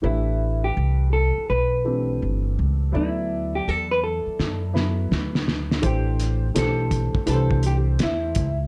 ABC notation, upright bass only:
X:1
M:4/4
L:1/16
Q:"Swing 16ths" 1/4=83
K:Ador
V:1 name="Upright bass" clef=bass
A,,,4 C,,3 z B,,,4 G,,,2 ^C,,2 | D,,4 E,,3 z F,,4 D,,4 | A,,,4 B,,,3 z C,,4 E,,2 ^C,,2 |]